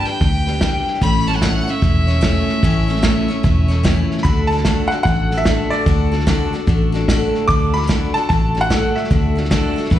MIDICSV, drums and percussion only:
0, 0, Header, 1, 2, 480
1, 0, Start_track
1, 0, Key_signature, 2, "major"
1, 0, Tempo, 404585
1, 1201, Time_signature, 4, 2, 24, 8
1, 11852, End_track
2, 0, Start_track
2, 0, Title_t, "Drums"
2, 77, Note_on_c, 9, 38, 28
2, 196, Note_off_c, 9, 38, 0
2, 244, Note_on_c, 9, 38, 33
2, 249, Note_on_c, 9, 36, 105
2, 363, Note_off_c, 9, 38, 0
2, 367, Note_off_c, 9, 36, 0
2, 558, Note_on_c, 9, 38, 31
2, 676, Note_off_c, 9, 38, 0
2, 723, Note_on_c, 9, 38, 105
2, 723, Note_on_c, 9, 44, 75
2, 727, Note_on_c, 9, 36, 77
2, 842, Note_off_c, 9, 38, 0
2, 842, Note_off_c, 9, 44, 0
2, 846, Note_off_c, 9, 36, 0
2, 1037, Note_on_c, 9, 38, 31
2, 1117, Note_off_c, 9, 38, 0
2, 1117, Note_on_c, 9, 38, 29
2, 1198, Note_off_c, 9, 38, 0
2, 1198, Note_on_c, 9, 38, 34
2, 1206, Note_on_c, 9, 36, 108
2, 1317, Note_off_c, 9, 38, 0
2, 1324, Note_off_c, 9, 36, 0
2, 1521, Note_on_c, 9, 38, 31
2, 1603, Note_off_c, 9, 38, 0
2, 1603, Note_on_c, 9, 38, 30
2, 1682, Note_off_c, 9, 38, 0
2, 1682, Note_on_c, 9, 38, 92
2, 1682, Note_on_c, 9, 44, 81
2, 1684, Note_on_c, 9, 36, 74
2, 1801, Note_off_c, 9, 38, 0
2, 1801, Note_off_c, 9, 44, 0
2, 1803, Note_off_c, 9, 36, 0
2, 1989, Note_on_c, 9, 38, 33
2, 2108, Note_off_c, 9, 38, 0
2, 2162, Note_on_c, 9, 38, 32
2, 2163, Note_on_c, 9, 36, 109
2, 2280, Note_off_c, 9, 38, 0
2, 2282, Note_off_c, 9, 36, 0
2, 2478, Note_on_c, 9, 38, 34
2, 2596, Note_off_c, 9, 38, 0
2, 2642, Note_on_c, 9, 36, 82
2, 2642, Note_on_c, 9, 38, 97
2, 2642, Note_on_c, 9, 44, 79
2, 2761, Note_off_c, 9, 36, 0
2, 2761, Note_off_c, 9, 38, 0
2, 2761, Note_off_c, 9, 44, 0
2, 2948, Note_on_c, 9, 38, 32
2, 3067, Note_off_c, 9, 38, 0
2, 3115, Note_on_c, 9, 38, 33
2, 3120, Note_on_c, 9, 36, 105
2, 3234, Note_off_c, 9, 38, 0
2, 3239, Note_off_c, 9, 36, 0
2, 3428, Note_on_c, 9, 38, 33
2, 3514, Note_off_c, 9, 38, 0
2, 3514, Note_on_c, 9, 38, 33
2, 3595, Note_off_c, 9, 38, 0
2, 3595, Note_on_c, 9, 38, 103
2, 3595, Note_on_c, 9, 44, 76
2, 3599, Note_on_c, 9, 36, 73
2, 3714, Note_off_c, 9, 38, 0
2, 3714, Note_off_c, 9, 44, 0
2, 3717, Note_off_c, 9, 36, 0
2, 3907, Note_on_c, 9, 38, 31
2, 4026, Note_off_c, 9, 38, 0
2, 4083, Note_on_c, 9, 36, 111
2, 4083, Note_on_c, 9, 38, 34
2, 4201, Note_off_c, 9, 36, 0
2, 4202, Note_off_c, 9, 38, 0
2, 4394, Note_on_c, 9, 38, 32
2, 4513, Note_off_c, 9, 38, 0
2, 4563, Note_on_c, 9, 36, 79
2, 4570, Note_on_c, 9, 38, 99
2, 4570, Note_on_c, 9, 44, 76
2, 4681, Note_off_c, 9, 36, 0
2, 4689, Note_off_c, 9, 38, 0
2, 4689, Note_off_c, 9, 44, 0
2, 4873, Note_on_c, 9, 38, 30
2, 4954, Note_off_c, 9, 38, 0
2, 4954, Note_on_c, 9, 38, 32
2, 5040, Note_on_c, 9, 36, 103
2, 5044, Note_off_c, 9, 38, 0
2, 5044, Note_on_c, 9, 38, 36
2, 5158, Note_off_c, 9, 36, 0
2, 5162, Note_off_c, 9, 38, 0
2, 5352, Note_on_c, 9, 38, 29
2, 5426, Note_off_c, 9, 38, 0
2, 5426, Note_on_c, 9, 38, 33
2, 5512, Note_off_c, 9, 38, 0
2, 5512, Note_on_c, 9, 38, 94
2, 5512, Note_on_c, 9, 44, 78
2, 5516, Note_on_c, 9, 36, 74
2, 5631, Note_off_c, 9, 38, 0
2, 5631, Note_off_c, 9, 44, 0
2, 5635, Note_off_c, 9, 36, 0
2, 5821, Note_on_c, 9, 38, 30
2, 5940, Note_off_c, 9, 38, 0
2, 5992, Note_on_c, 9, 38, 34
2, 5995, Note_on_c, 9, 36, 104
2, 6110, Note_off_c, 9, 38, 0
2, 6114, Note_off_c, 9, 36, 0
2, 6296, Note_on_c, 9, 38, 33
2, 6414, Note_off_c, 9, 38, 0
2, 6470, Note_on_c, 9, 38, 108
2, 6470, Note_on_c, 9, 44, 76
2, 6475, Note_on_c, 9, 36, 78
2, 6589, Note_off_c, 9, 38, 0
2, 6589, Note_off_c, 9, 44, 0
2, 6593, Note_off_c, 9, 36, 0
2, 6785, Note_on_c, 9, 38, 28
2, 6903, Note_off_c, 9, 38, 0
2, 6956, Note_on_c, 9, 36, 108
2, 6956, Note_on_c, 9, 38, 34
2, 7074, Note_off_c, 9, 38, 0
2, 7075, Note_off_c, 9, 36, 0
2, 7267, Note_on_c, 9, 38, 33
2, 7353, Note_off_c, 9, 38, 0
2, 7353, Note_on_c, 9, 38, 33
2, 7438, Note_on_c, 9, 36, 75
2, 7440, Note_off_c, 9, 38, 0
2, 7440, Note_on_c, 9, 38, 104
2, 7440, Note_on_c, 9, 44, 74
2, 7557, Note_off_c, 9, 36, 0
2, 7558, Note_off_c, 9, 38, 0
2, 7558, Note_off_c, 9, 44, 0
2, 7750, Note_on_c, 9, 38, 32
2, 7868, Note_off_c, 9, 38, 0
2, 7917, Note_on_c, 9, 38, 34
2, 7919, Note_on_c, 9, 36, 104
2, 8035, Note_off_c, 9, 38, 0
2, 8037, Note_off_c, 9, 36, 0
2, 8234, Note_on_c, 9, 38, 32
2, 8352, Note_off_c, 9, 38, 0
2, 8402, Note_on_c, 9, 36, 86
2, 8407, Note_on_c, 9, 38, 100
2, 8407, Note_on_c, 9, 44, 82
2, 8520, Note_off_c, 9, 36, 0
2, 8525, Note_off_c, 9, 38, 0
2, 8525, Note_off_c, 9, 44, 0
2, 8716, Note_on_c, 9, 38, 29
2, 8835, Note_off_c, 9, 38, 0
2, 8882, Note_on_c, 9, 36, 103
2, 8885, Note_on_c, 9, 38, 32
2, 9001, Note_off_c, 9, 36, 0
2, 9004, Note_off_c, 9, 38, 0
2, 9196, Note_on_c, 9, 38, 33
2, 9281, Note_off_c, 9, 38, 0
2, 9281, Note_on_c, 9, 38, 33
2, 9365, Note_off_c, 9, 38, 0
2, 9365, Note_on_c, 9, 36, 80
2, 9365, Note_on_c, 9, 38, 104
2, 9365, Note_on_c, 9, 44, 80
2, 9484, Note_off_c, 9, 36, 0
2, 9484, Note_off_c, 9, 38, 0
2, 9484, Note_off_c, 9, 44, 0
2, 9679, Note_on_c, 9, 38, 30
2, 9797, Note_off_c, 9, 38, 0
2, 9847, Note_on_c, 9, 36, 107
2, 9853, Note_on_c, 9, 38, 34
2, 9966, Note_off_c, 9, 36, 0
2, 9972, Note_off_c, 9, 38, 0
2, 10155, Note_on_c, 9, 38, 31
2, 10274, Note_off_c, 9, 38, 0
2, 10326, Note_on_c, 9, 36, 74
2, 10330, Note_on_c, 9, 38, 111
2, 10330, Note_on_c, 9, 44, 83
2, 10445, Note_off_c, 9, 36, 0
2, 10449, Note_off_c, 9, 38, 0
2, 10449, Note_off_c, 9, 44, 0
2, 10637, Note_on_c, 9, 38, 30
2, 10729, Note_off_c, 9, 38, 0
2, 10729, Note_on_c, 9, 38, 33
2, 10806, Note_off_c, 9, 38, 0
2, 10806, Note_on_c, 9, 38, 33
2, 10807, Note_on_c, 9, 36, 102
2, 10924, Note_off_c, 9, 38, 0
2, 10926, Note_off_c, 9, 36, 0
2, 11116, Note_on_c, 9, 38, 33
2, 11206, Note_off_c, 9, 38, 0
2, 11206, Note_on_c, 9, 38, 34
2, 11283, Note_on_c, 9, 36, 80
2, 11284, Note_off_c, 9, 38, 0
2, 11284, Note_on_c, 9, 38, 101
2, 11284, Note_on_c, 9, 44, 81
2, 11402, Note_off_c, 9, 36, 0
2, 11403, Note_off_c, 9, 38, 0
2, 11403, Note_off_c, 9, 44, 0
2, 11587, Note_on_c, 9, 38, 31
2, 11685, Note_off_c, 9, 38, 0
2, 11685, Note_on_c, 9, 38, 30
2, 11755, Note_off_c, 9, 38, 0
2, 11755, Note_on_c, 9, 38, 33
2, 11760, Note_on_c, 9, 36, 105
2, 11852, Note_off_c, 9, 36, 0
2, 11852, Note_off_c, 9, 38, 0
2, 11852, End_track
0, 0, End_of_file